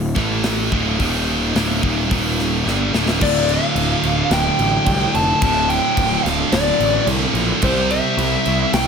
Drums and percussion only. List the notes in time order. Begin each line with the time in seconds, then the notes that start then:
0.16 kick, snare
0.44 snare, open hi-hat
0.72 kick
1.00 kick, open hi-hat
1.56 snare, open hi-hat
1.83 kick
2.11 kick, open hi-hat
2.39 snare
2.68 snare
2.94 snare
3.08 snare
3.21 kick, crash
3.49 crash
3.76 crash
4.03 crash
4.31 snare, crash
4.59 crash
4.86 kick, crash
5.15 crash
5.42 kick, crash
5.70 crash
5.97 kick, crash
6.26 snare, crash
6.52 snare, crash
6.80 crash
7.07 crash
7.35 crash
7.62 kick, crash
7.91 crash
8.18 crash
8.45 crash
8.73 snare, crash